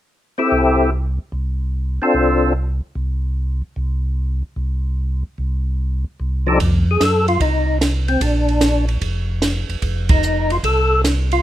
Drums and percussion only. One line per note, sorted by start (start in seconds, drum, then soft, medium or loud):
6.60 kick soft
6.60 ride medium
7.01 snare medium
7.01 hi-hat pedal soft
7.01 ride medium
7.28 ride soft
7.40 kick soft
7.40 ride medium
7.81 snare medium
7.81 hi-hat pedal medium
7.81 ride medium
8.08 ride soft
8.21 kick soft
8.21 ride medium
8.49 ride soft
8.61 snare medium
8.61 hi-hat pedal medium
8.61 ride medium
8.88 ride soft
9.01 kick soft
9.01 ride medium
9.42 snare medium
9.42 hi-hat pedal medium
9.42 ride medium
9.70 ride soft
9.82 kick soft
9.82 ride soft
10.09 kick medium
10.09 ride medium
10.23 hi-hat pedal soft
10.50 ride soft
10.63 kick soft
10.63 ride medium
11.04 snare medium
11.04 hi-hat pedal medium
11.04 ride medium
11.32 ride soft